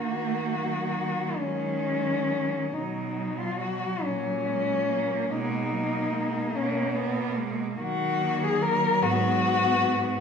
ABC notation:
X:1
M:6/8
L:1/16
Q:3/8=47
K:Ebm
V:1 name="Cello"
G6 D6 | ^D3 F ^F2 _D6 | ^D6 _D2 z4 | G3 A B2 G6 |]
V:2 name="Cello" clef=bass
B,6 A,6 | ^F,6 G,2 A,2 B,2 | A,2 ^F,2 A,2 ^A,2 =B,2 _A,2 | G,12 |]
V:3 name="Cello" clef=bass
z2 G,6 G,4 | ^F,2 F,4 G,2 G,4 | ^A,2 A,6 A,4 | z2 B,4 C2 C4 |]
V:4 name="Cello" clef=bass
E,6 E,6 | =B,,6 _B,,6 | =B,,6 B,,6 | E,6 A,,6 |]